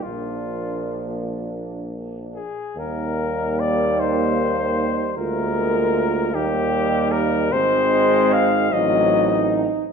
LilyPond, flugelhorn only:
\new Staff \with { instrumentName = "Flugelhorn" } { \time 6/8 \key ees \major \tempo 4. = 50 f'4. r4 aes'8 | bes'4 d''8 c''4. | bes'4. g'4 bes'8 | c''4 f''8 ees''4 r8 | }